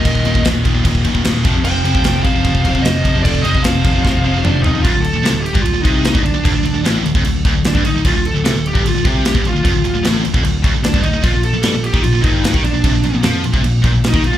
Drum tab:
CC |x-x-x-x-x-x-x-x-|x-x-x-x-x-x-x-x-|x-x-x-x---------|x-x-x-x-x-x-x-x-|
SD |----o-------o---|----o-------o---|----o---o-------|----o-------o---|
T2 |----------------|----------------|------------o---|----------------|
FT |----------------|----------------|--------------o-|----------------|
BD |oo-o--o-oooo--o-|---o--o-oooo--o-|oo-o--o-o-------|o------o--o--o--|

CC |x-x-x-x-x-x-x-x-|x-x-x-x-x-x-x-x-|x-x-x-x-x-x-x-x-|x-x-x-x-x-x-x-x-|
SD |----o-------o---|----o-------o---|----o-------o---|----o-------o---|
T2 |----------------|----------------|----------------|----------------|
FT |----------------|----------------|----------------|----------------|
BD |o------o--o--o--|o------o--o--o--|o------o--o--o--|o------o--o--o--|

CC |x-x-x-x-x-x-x-x-|
SD |----o-------o---|
T2 |----------------|
FT |----------------|
BD |o------o--o--o--|